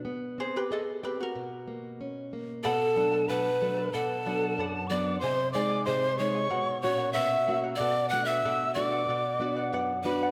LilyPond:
<<
  \new Staff \with { instrumentName = "Quena" } { \time 2/4 \key b \dorian \tempo 4 = 93 r2 | r2 | a''4 b''4 | a''4. d'''8 |
bis''8 d'''8 bis''8 cis'''8~ | cis'''8 cis'''8 e'''8. r16 | d'''8 fis'''16 e'''8. d'''8~ | d'''4 r8 b''8 | }
  \new Staff \with { instrumentName = "Charango" } { \time 2/4 \key b \dorian r8 <gis' bis'>16 <g' b'>16 <a' dis''>8 <g' b'>16 <fis' ais'>16~ | <fis' ais'>4. r8 | <a' b' d'' fis'' a''>8 <a' b' fis'' a''>16 <a' b' a''>16 <a' b' d'' fis'' a''>8 <a' b' fis'' a''>16 <a' b' a''>16 | <b' d'' fis''>8 <b' d'' fis''>16 <d'' fis''>16 <b' d'' fis''>8 <b' d'' fis''>16 <d'' fis''>16 |
<gis' bis' dis'' gis''>8 <gis' bis' dis'' gis''>16 <gis' dis'' gis''>16 <gis' bis' dis'' gis''>8 <gis' bis' dis'' gis''>16 <gis' dis'' gis''>16 | <fis' ais' b' cis'' fis''>8 <fis' ais' cis'' fis''>16 <fis' ais' fis''>16 <fis' ais' b' cis'' fis''>8 <fis' ais' cis'' fis''>16 <fis' ais' fis''>16 | <fis' a' b' d'' fis''>8 <fis' b' d'' fis''>16 <fis' b' fis''>16 <fis' a' b' d'' fis''>8 <fis' b' d'' fis''>16 <fis' b' fis''>16 | <b' d'' fis''>8 <b' d'' fis''>16 <d'' fis''>16 <b' d'' fis''>8 <b' d'' fis''>16 <d'' fis''>16 | }
  \new Staff \with { instrumentName = "Pan flute" } { \time 2/4 \key b \dorian r2 | r2 | a'4 b'4 | a'4. d''8 |
bis'8 d''8 bis'8 cis''8~ | cis''8 cis''8 e''8. r16 | d''8 fis''16 e''8. d''8~ | d''4 r8 b'8 | }
  \new Staff \with { instrumentName = "Nylon-string guitar" } { \time 2/4 \key b \dorian b8 bis8 gis'8 bis8 | b,8 ais8 cis'8 ais8 | b,8 <fis a d'>8 b,8 <fis a d'>8 | b,8 <fis b d'>8 fis,8 <fis b d'>8 |
bis,8 <gis dis' bis'>8 bis,8 <gis dis'>8 | b,8 <ais, cis' fis'>8 b,8 <ais cis' fis'>8 | b,8 <a d' fis'>8 b,8 <a d' fis'>8 | b,8 <b d' fis'>8 fis,8 <b d' fis'>8 | }
>>